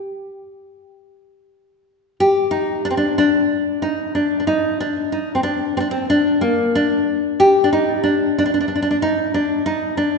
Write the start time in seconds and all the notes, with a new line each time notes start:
Already playing: G4
2.20 G4
2.51 D#4
2.85 D4
2.90 C4
2.97 D4
3.18 D4
3.82 D#4
4.15 D4
4.40 D4
4.47 D#4
4.80 D4
5.12 D#4
5.35 C4
5.43 D4
5.77 C4 D4
5.91 C4
6.10 D4
6.41 A#3
6.75 D4
7.40 G4
7.64 D4
7.73 D#4
8.04 D4
8.38 D4
8.46 D4
8.54 D4
8.61 D4
8.68 D4
8.75 D4
8.82 D4
8.91 D4
9.02 D#4
9.34 D4
9.66 D#4
9.97 D4